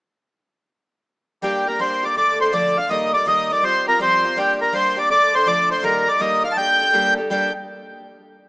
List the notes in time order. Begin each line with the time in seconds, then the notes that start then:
1.42 G3 A#3 D4 G4
1.66 A#3 D4 G4 A#4
1.79 G3 A#3 D4 G4 C5
2.03 A#3 D4 G4 D5
2.16 D3 A3 D4 A4 D5
2.40 A3 D4 A4 C5
2.53 D3 F3 A3 D4 A4 D5
2.76 A3 D4 A4 F5
2.89 D#3 G3 A#3 D#4 A#4 D#5
3.13 G3 D#4 A#4 D5
3.26 D#3 G3 A#3 D#4 A#4 D#5
3.50 G3 D#4 A#4 D5
3.62 G3 C4 F4 G4 C5
3.86 C4 F4 G4 A#4
3.99 F3 G3 C4 F4 G4 C5
4.23 C4 F4 G4
4.36 G3 A#3 D4 G4
4.59 A#3 D4 G4 A#4
4.73 G3 A#3 D4 G4 C5
4.97 A#3 D4 G4 D5
5.09 D3 A3 D4 A4 D5
5.33 A3 D4 A4 C5
5.46 D3 F3 A3 D4 A4 D5
5.70 A3 D4 A4 C5
5.82 D#3 G3 A#3 D#4 A#4
6.06 G3 D#4 A#4 D5
6.20 D#3 G3 A#3 D#4 A#4 D#5
6.43 G3 D#4 A#4 F5
6.52 A5
6.57 A#3 D4 G4 A4 G5
6.80 D4 G4 A4
6.93 G3 A#3 D4 G4 A4
7.17 D4 G4 A4
7.30 G3 A#3 D4 G4 A4 G5